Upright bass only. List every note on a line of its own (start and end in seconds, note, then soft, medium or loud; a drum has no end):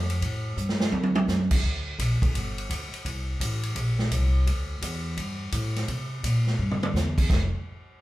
0.00 0.20 F2 loud
0.22 0.56 A2 medium
0.57 0.91 G2 medium
0.92 1.27 D2 medium
1.28 1.62 F#2 medium
1.64 1.98 D2 medium
1.99 2.20 A#1 medium
2.22 muted upright bass stroke soft
2.34 2.68 G1 medium
2.69 2.91 D2 medium
2.93 muted upright bass stroke soft
3.05 3.39 C2 medium
3.40 3.75 A1 medium
3.75 4.10 A#1 loud
4.11 4.45 C2 medium
4.46 4.81 D2 medium
4.82 5.16 E2 medium
5.17 5.51 G2 medium
5.53 5.87 A2 loud
5.88 6.22 C3 medium
6.23 6.58 A#2 medium
6.58 6.93 G2 medium
6.93 7.28 E2 medium
7.29 7.51 F1 medium